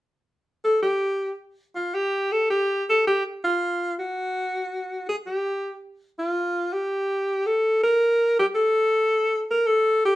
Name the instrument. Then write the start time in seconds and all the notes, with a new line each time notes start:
alto saxophone
0.64 A4
0.82 G4
1.76 F4
1.94 G4
2.32 A4
2.50 G4
2.89 A4
3.07 G4
3.44 F4
3.99 F#4
5.09 G#4
5.26 G4
6.19 F4
6.73 G4
7.46 A4
7.83 A#4
8.39 G4
8.55 A4
9.51 A#4
9.67 A4
10.05 G4